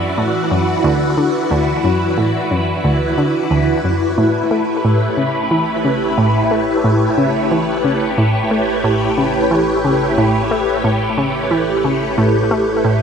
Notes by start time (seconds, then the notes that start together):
Already playing: F#2 E3 E4 F#4 B4 D5
0.18 A2
0.51 F#2
0.84 D2
1.17 D3
1.51 D2
1.84 F#2
2.18 A2
2.51 F#2
2.84 D2
3.18 D3
3.51 D2
3.84 F#2
4.18 A1 A2 A3
4.51 A3
4.66 G4 C#5
4.84 A2
5.17 C#3
5.51 E3
5.85 C#3
6.18 A2
6.51 A3
6.84 A2
7.18 C#3
7.51 E3
7.85 C#3
8.18 A2
8.51 A3
8.84 A2
9.18 C#3
9.51 E3
9.85 C#3
10.18 A2
10.51 A3
10.84 A2
11.18 C#3
11.51 E3
11.84 C#3
12.18 A2
12.51 A3
12.84 A2